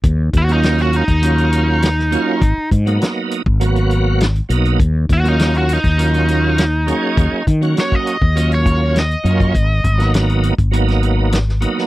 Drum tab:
HH |x-xxxxxxxxx-x-x-|x-xxx-x-xxx-xxxx|x-xxxxxxxxx-x-x-|x-xxx-x-xxx-xxxx|
SD |----oo------oo--|----o-------o---|----o-------o---|----o-------o---|
BD |o-o----o--------|o-o----o--------|o-o----o--------|o-o--o-o--o----o|

HH |x-xxxxxxxxx-x-x-|
SD |---oo----o--oo-o|
BD |o-o----o--------|